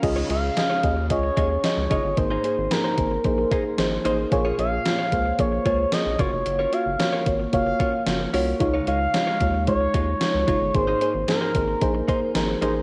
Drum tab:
CC |x-------|--------|--------|--------|
HH |xxxxxxxx|xxxxxxxx|xxxxxxxx|xxxxxxxo|
SD |--o---o-|--o---o-|--o---o-|--o---o-|
BD |o--ooo-o|o--ooo--|o--ooo-o|---ooo--|

CC |--------|--------|
HH |xxxxxxxx|xxxxxxxx|
SD |--o---o-|--o---o-|
BD |o--ooo-o|o--ooo--|